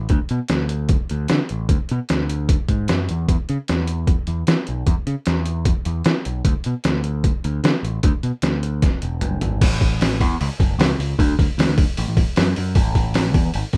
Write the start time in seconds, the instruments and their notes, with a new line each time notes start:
0.09 picked electric bass D2, kick, closed hi-hat
0.29 picked electric bass B2, closed hi-hat
0.48 picked electric bass D2, snare, closed hi-hat
0.69 closed hi-hat
0.89 kick, closed hi-hat
1.09 picked electric bass D2, closed hi-hat
1.28 picked electric bass D3, snare, closed hi-hat
1.49 picked electric bass A1, closed hi-hat
1.69 picked electric bass D2, kick, closed hi-hat
1.89 picked electric bass B2, closed hi-hat
2.09 picked electric bass D2, snare, closed hi-hat
2.29 closed hi-hat
2.49 kick, closed hi-hat
2.69 picked electric bass G#2, kick, closed hi-hat
2.88 picked electric bass F#2, snare, closed hi-hat
3.09 picked electric bass E2, closed hi-hat
3.28 picked electric bass E2, kick, closed hi-hat
3.49 picked electric bass C#3, closed hi-hat
3.68 picked electric bass E2, snare, closed hi-hat
3.87 closed hi-hat
4.07 kick, closed hi-hat
4.27 picked electric bass E2, closed hi-hat
4.47 picked electric bass E3, snare, closed hi-hat
4.67 picked electric bass B1, closed hi-hat
4.87 picked electric bass E2, kick, closed hi-hat
5.07 picked electric bass C#3, closed hi-hat
5.26 picked electric bass E2, snare, closed hi-hat
5.46 closed hi-hat
5.65 kick, closed hi-hat
5.85 picked electric bass E2, closed hi-hat
6.04 picked electric bass E3, snare, closed hi-hat
6.25 picked electric bass B1, closed hi-hat
6.45 picked electric bass D2, kick, closed hi-hat
6.64 picked electric bass B2, closed hi-hat
6.84 picked electric bass D2, snare, closed hi-hat
7.04 closed hi-hat
7.24 kick, closed hi-hat
7.44 picked electric bass D2, closed hi-hat
7.64 picked electric bass D3, snare, closed hi-hat
7.83 picked electric bass A1, closed hi-hat
8.03 picked electric bass D2, kick, closed hi-hat
8.23 picked electric bass B2, closed hi-hat
8.42 picked electric bass D2, snare, closed hi-hat
8.63 closed hi-hat
8.82 kick, snare, closed hi-hat
9.02 picked electric bass E1, closed hi-hat
9.21 picked electric bass F#1, closed hi-hat, mid tom
9.41 picked electric bass G#1, closed hi-hat, floor tom
9.61 picked electric bass A1, kick, open hi-hat, crash
9.81 kick, open hi-hat
10.01 snare, open hi-hat
10.21 picked electric bass E2, kick, open hi-hat
10.41 picked electric bass C#2, open hi-hat
10.59 picked electric bass F#1, kick, open hi-hat
10.79 picked electric bass C#2, snare, open hi-hat
10.99 picked electric bass C#2, open hi-hat
11.19 picked electric bass D2, kick, open hi-hat
11.39 picked electric bass D2, kick, open hi-hat
11.58 picked electric bass D2, snare, open hi-hat
11.68 picked electric bass D2
11.78 kick, open hi-hat
11.97 picked electric bass A1, open hi-hat
12.08 picked electric bass A1
12.17 kick, open hi-hat
12.36 picked electric bass F#2, snare, open hi-hat
12.56 picked electric bass F#2, open hi-hat
12.75 picked electric bass A1, kick, open hi-hat
12.95 kick, open hi-hat
13.14 snare, open hi-hat
13.34 picked electric bass E2, kick, open hi-hat
13.54 picked electric bass G#1, open hi-hat
13.73 picked electric bass C#2, kick, open hi-hat